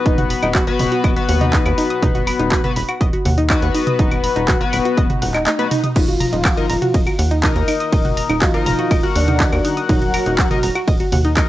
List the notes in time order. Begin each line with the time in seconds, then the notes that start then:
Already playing: B3 F#4 B4
0.06 D#1 D#4 D#5, kick, closed hi-hat
0.18 F#4 F#5, closed hi-hat, mid tom
0.30 B5, open hi-hat
0.43 D#1 D#4 D#5, closed hi-hat, claves
0.55 F#4 F#5, kick, clap, closed hi-hat
0.67 B3 F#4 B4 B5, closed hi-hat
0.79 D#1 B5, mid tom, open hi-hat
0.92 F#4 F#5, closed hi-hat
1.04 D#1 D#5 D#6, kick, closed hi-hat, claves
1.16 B3 F#4 B4 F#5, closed hi-hat
1.29 D#2 F#5 F#6, open hi-hat
1.41 D#4 D#5, closed hi-hat, mid tom
1.53 D#4 D#5, kick, clap, closed hi-hat
1.66 D#2 B4 B5, closed hi-hat, claves
1.78 D#4 D#5, open hi-hat
1.90 D#6, closed hi-hat
2.02 D#1 D#4 D#5, kick, closed hi-hat, mid tom
2.15 F#4 F#5, closed hi-hat
2.27 B5, open hi-hat, claves
2.39 D#1 D#4 D#5, closed hi-hat
2.52 F#4 F#5, kick, clap, closed hi-hat
2.64 B3 F#4 B4 B5, closed hi-hat, mid tom
2.76 D#1 B5, open hi-hat
2.88 F#4 F#5, closed hi-hat, claves
3.01 D#1 D#5 D#6, kick, closed hi-hat
3.13 F#4 F#5, closed hi-hat
3.25 D#2 F#5 F#6, mid tom, open hi-hat
3.38 D#4 D#5, closed hi-hat
3.50 B3 D#4 F#4 B4 D#5, kick, clap, closed hi-hat, claves
3.62 D#2 B4 B5, closed hi-hat
3.74 D#4 D#5, open hi-hat
3.87 D#6, closed hi-hat, mid tom
3.99 D#1 D#4 D#5, kick, closed hi-hat
4.11 F#4 F#5, closed hi-hat, claves
4.24 B5, open hi-hat
4.36 D#1 D#4 D#5, closed hi-hat
4.48 F#4 F#5, kick, clap, closed hi-hat, mid tom
4.61 B3 F#4 B4 B5, closed hi-hat
4.73 D#1 B5, open hi-hat, claves
4.85 F#4 F#5, closed hi-hat
4.97 D#1 D#5 D#6, kick, closed hi-hat, swell
5.10 F#4 F#5, closed hi-hat, mid tom
5.22 D#1 F#5 F#6, open hi-hat
5.34 D#4 D#5, clap, closed hi-hat, claves
5.47 D#4 D#5, clap, closed hi-hat, high tom
5.59 B3 F#4 B4 B5, closed hi-hat, high tom
5.71 D#4 D#5, mid tom, open hi-hat
5.84 D#6, closed hi-hat, mid tom
5.96 D#1 F3 D#4 F4 D#5, kick, closed hi-hat, ride, crash
6.08 F#4 F#5, closed hi-hat
6.20 A#5 A#6, mid tom, open hi-hat
6.33 D#1 D#4 D#5, closed hi-hat
6.45 F#4 F#5, kick, clap, closed hi-hat, ride, claves
6.57 D#4 A#4 D#5 A#5, closed hi-hat
6.70 D#1 A#5 A#6, open hi-hat
6.82 F#4 F#5, closed hi-hat, mid tom
6.94 D#1 D#5 D#6, kick, closed hi-hat, ride
7.07 F#4 F#5, closed hi-hat, claves
7.19 D#2 F#5 F#6, open hi-hat
7.31 D#4 D#5, closed hi-hat
7.43 D#4 A#4 D#5, kick, clap, closed hi-hat, mid tom, ride
7.56 D#2 A#4 A#5, closed hi-hat
7.68 D#4 D#5, open hi-hat, claves
7.80 D#6, closed hi-hat
7.93 D#1 D#4 D#5, kick, closed hi-hat, ride
8.05 F#4 F#5, closed hi-hat, mid tom
8.17 A#5 A#6, open hi-hat
8.29 D#1 D#4 D#5, closed hi-hat, claves
8.42 F3 F4 F#4 F#5, kick, clap, closed hi-hat, ride
8.54 D#4 A#4 D#5 A#5, closed hi-hat
8.66 D#1 A#5 A#6, mid tom, open hi-hat
8.79 F#4 F#5, closed hi-hat
8.91 D#1 D#5 D#6, kick, closed hi-hat, ride, claves
9.03 F#4 A#4 F#5, closed hi-hat
9.15 D#2 D3 D4 F#5 F#6, open hi-hat
9.28 D#4 D#5, closed hi-hat, mid tom
9.40 D#4 D#5, kick, clap, closed hi-hat, ride
9.52 D#2 A#4 A#5, closed hi-hat, claves
9.65 D#4 D#5, open hi-hat
9.77 D#6, closed hi-hat
9.89 D#1 F#3 D#4 F#4 D#5, kick, closed hi-hat, mid tom, ride
10.02 F#4 F#5, closed hi-hat
10.14 A#5 A#6, open hi-hat, claves
10.26 D#1 D#4 D#5, closed hi-hat
10.38 F#4 F#5, kick, clap, closed hi-hat, ride
10.51 D#4 A#4 D#5 A#5, closed hi-hat, mid tom
10.63 D#1 A#5 A#6, open hi-hat
10.75 F#4 F#5, closed hi-hat, claves
10.88 D#1 D#5 D#6, kick, closed hi-hat, ride
11.00 F#4 F#5, closed hi-hat
11.12 D#2 F#5 F#6, mid tom, open hi-hat
11.25 D#4 D#5, closed hi-hat
11.37 D#4 A#4 D#5, kick, clap, closed hi-hat, ride, claves